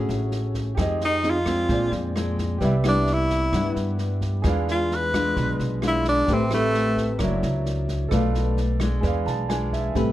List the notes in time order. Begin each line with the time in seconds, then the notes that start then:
Already playing: A2 C#4 F#4 G#4 C#5 E5
0.09 A1, snare
0.31 snare
0.54 kick, snare
0.75 F2 F3 C4 G4 G#4, kick, cross-stick, snare
0.79 D#4 G#4 C5 D#5
1.01 snare
1.05 D#4
1.23 C4 D#4 G#4, snare
1.30 F4
1.46 G#3 C4 D4, kick, cross-stick, snare
1.67 A#1 A#2 F4 G#4 C5, kick, snare
1.72 D5
1.92 F2, snare
2.16 G#3 C4 D4, cross-stick, snare
2.38 kick, snare
2.58 C2 C3 G3 B3 E4 G4 B4 D5, kick, snare
2.64 E5
2.84 G3 B3 E4, cross-stick, snare
2.88 D4
3.07 snare
3.13 E4
3.30 kick, snare
3.53 G2 G3 B3 E4, kick, cross-stick, snare
3.76 G2, snare
3.98 snare
4.21 kick, snare
4.42 E2 E3 G#4 B4, kick, cross-stick, snare
4.46 G#3 D4 F4 D5 F5
4.68 F4, snare
4.91 B4, snare
5.14 G#3 D4 F4, kick, cross-stick, snare
5.36 B1 B2, kick, snare
5.59 B1, snare
5.82 G#3 D4 F4, cross-stick, snare
5.87 E4
6.04 kick, snare
6.09 D4
6.26 A1 A3 C4 G4 B4, kick, snare
6.30 C4 B4 E5
6.51 A3 C4 G4 B4, cross-stick, snare
6.74 snare
6.97 kick, snare
7.18 F#1 F#3 D4 E4 A#4 C#5 D5, kick, cross-stick, snare
7.24 E5
7.42 C#2, snare
7.66 snare
7.88 kick, snare
8.09 B1 B2 A4 B4 D5, kick, cross-stick, snare
8.13 A3 D4 F4 F5
8.35 snare
8.57 snare
8.80 G#3 D4, kick, cross-stick, snare
9.01 E2 E3 G#4 B4 D5, kick, snare
9.07 F5
9.26 B1 A5, snare
9.49 G#3 D4 F4 G#5, cross-stick, snare
9.72 E5, kick, snare
9.95 A1 C3 G3 A3 C4 G4 B4, kick, snare